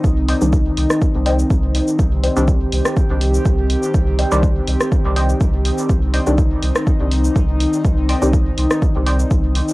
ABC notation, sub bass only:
X:1
M:4/4
L:1/16
Q:"Swing 16ths" 1/4=123
K:Cm
V:1 name="Sub bass" clef=bass
C,,2 z C,,2 z C,, z2 C,,2 z C,,2 z2 | C,,2 z C,,2 z C,, z2 C,,2 z C,,2 z2 | C,,2 z C,,2 z C,, z2 C,,2 z C,,2 z2 | C,,2 z C,,2 z C,, z2 C,,2 z C,,2 z2 |
C,,2 z C,,2 z C,, z2 C,,2 z C,,2 z2 |]